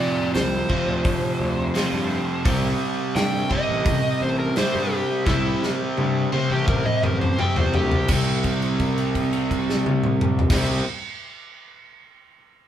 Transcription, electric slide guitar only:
0.00 0.31 F4 medium
0.00 0.33 D5 medium
0.34 2.42 C5 loud
3.16 3.50 G5 medium
3.52 4.20 D#5 loud
4.22 4.39 C5 medium
4.40 4.56 A#4 medium
4.57 4.93 C5 loud
4.93 5.27 G4 loud
5.27 5.61 E4 loud
6.34 6.50 C5 loud
6.52 6.68 G4 loud
6.69 6.86 A#4 medium
6.86 7.03 D#5 medium
7.03 7.20 A#4 medium
7.21 7.38 C5 loud
7.39 7.56 G5 medium
7.57 7.74 C5 medium
7.75 8.09 G4 loud

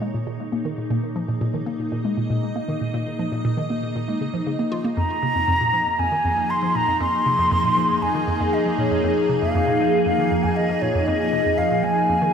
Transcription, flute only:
4.97 6.01 A#5 loud
5.99 6.52 G#5 loud
6.50 6.77 C6 loud
6.76 7.00 A#5 loud
7.01 8.04 C6 loud
8.02 8.55 G#5 medium
8.53 8.78 D#5 medium
8.79 9.13 C#5 medium
9.42 10.02 F5 loud
10.05 10.45 F5 loud
10.44 10.58 G#5 loud
10.56 10.83 D#5 loud
10.82 11.08 C#5 medium
11.07 11.59 D#5 loud
11.58 11.85 F5 loud
11.83 12.33 G#5 loud

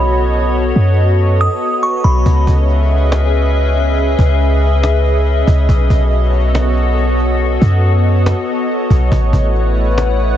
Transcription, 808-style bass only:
0.00 0.72 B1 loud
0.76 1.48 F#2 loud
2.04 2.25 B1 loud
2.26 2.47 C#2 loud
2.47 4.15 C#2 loud
4.19 5.43 C#2 loud
5.47 5.68 C#2 loud
5.69 5.89 B1 loud
5.90 7.58 B1 loud
7.62 8.34 F#2 loud
8.90 9.11 B1 loud
9.12 9.32 A1 loud
9.33 10.37 A1 loud

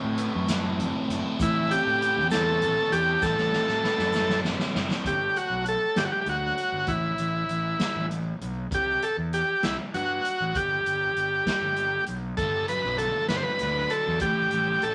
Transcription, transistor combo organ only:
1.42 1.72 E4 medium
1.71 2.28 G4 medium
2.31 2.94 A4 loud
2.92 3.23 G4 loud
3.22 4.40 A4 medium
5.07 5.37 G4 medium
5.37 5.65 F#4 medium
5.68 5.99 A4 loud
5.97 6.04 G4 medium
6.05 6.11 F#4 medium
6.12 6.20 G4 medium
6.21 6.28 G4 medium
6.29 6.91 F#4 medium
6.88 8.06 E4 medium
8.74 9.04 G4 medium
9.03 9.17 A4 medium
9.34 9.65 G4 medium
9.64 9.77 E4 medium
9.94 10.57 F#4 medium
10.56 12.04 G4 medium
12.37 12.66 A4 medium
12.69 12.97 B4 medium
12.98 13.27 A4 medium
13.29 13.37 B4 medium
13.36 13.44 C5 medium
13.43 13.92 B4 medium
13.91 14.19 A4 medium
14.22 14.85 G4 medium
14.83 14.95 A4 loud

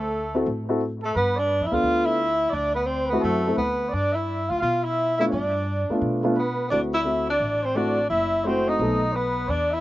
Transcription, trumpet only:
0.00 0.48 A4 medium
1.02 1.14 A4 medium
1.15 1.38 B4 medium
1.36 1.65 D5 medium
1.63 1.73 E5 medium
1.72 2.07 F5 medium
2.06 2.52 E5 medium
2.50 2.74 D5 medium
2.74 2.87 B4 medium
2.86 3.09 C5 medium
3.07 3.20 B4 medium
3.20 3.54 A4 medium
3.55 3.91 B4 medium
3.89 4.14 D5 medium
4.13 4.50 E5 medium
4.49 4.58 F5 medium
4.59 4.84 F5 medium
4.83 5.17 E5 medium
5.18 5.24 E5 medium
5.30 5.96 D5 medium
6.35 6.68 B4 medium
6.70 6.81 D5 medium
6.94 7.26 E5 medium
7.29 7.64 D5 medium
7.63 7.77 C5 medium
7.75 8.10 D5 medium
8.11 8.46 E5 medium
8.45 8.69 C5 medium
8.68 9.15 D#5 medium
9.13 9.50 B4 medium
9.48 9.72 D5 medium
9.71 9.80 E5 medium

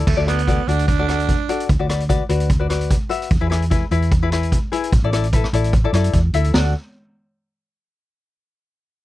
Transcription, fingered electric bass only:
0.07 0.16 D2 medium
0.17 0.59 D2 medium
0.68 1.34 D2 medium
1.69 1.78 D2 loud
1.80 2.21 D2 medium
2.29 2.96 D2 medium
3.31 3.40 E2 loud
3.41 3.82 E2 medium
3.91 4.58 E2 medium
4.92 5.01 A1 loud
5.02 5.43 A1 medium
5.53 5.86 A1 medium
5.93 6.11 F#2 medium
6.13 6.31 E2 loud
6.34 6.52 D2 medium
6.54 6.73 D2 loud

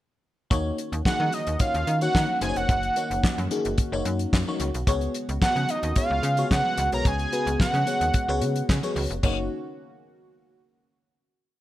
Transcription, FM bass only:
0.51 0.72 D#2 loud
0.92 1.02 D#2 loud
1.05 1.11 D#3 soft
1.20 1.30 D#3 loud
1.47 1.57 D#2 medium
1.74 1.84 D#2 medium
1.87 2.08 D#3 medium
2.15 2.26 D#3 medium
2.41 2.53 F#1 loud
2.56 2.66 F1 medium
2.69 2.90 F#1 loud
3.11 3.20 F#1 medium
3.38 3.48 F#2 loud
3.65 3.75 F#1 medium
3.92 4.02 F#1 medium
4.05 4.26 F#2 loud
4.33 4.44 F#2 loud
4.60 4.71 C#2 medium
4.74 4.84 B1 medium
4.87 5.08 C#2 loud
5.29 5.39 C#2 medium
5.42 5.47 C#3 soft
5.56 5.66 C#3 medium
5.83 5.93 D#2 medium
6.10 6.20 C#2 medium
6.23 6.44 C#3 loud
6.51 6.62 C#3 loud
6.78 6.89 C#2 loud
6.92 7.02 B1 medium
7.05 7.26 C#2 medium
7.47 7.57 C#2 loud
7.60 7.66 C#3 soft
7.74 7.84 C#3 loud
8.01 8.11 D#2 medium
8.28 8.43 C#2 loud
8.41 8.62 C#3 loud
8.69 8.80 C#3 loud
8.96 9.07 C#2 loud
9.10 9.20 F1 medium
9.23 9.49 F#1 medium

